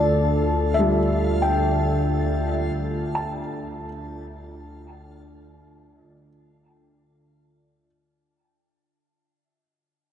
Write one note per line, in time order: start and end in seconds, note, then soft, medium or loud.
0.00 7.80 D2 medium
0.00 7.84 D3 medium
0.00 7.84 D4 medium
0.00 7.85 F4 medium
0.00 7.88 A4 medium
0.00 0.97 D5 medium
0.00 7.87 F5 medium
0.00 7.87 A6 medium
0.74 3.84 E5 medium
0.79 3.89 G3 medium
1.42 3.38 G5 medium
3.15 6.27 A5 medium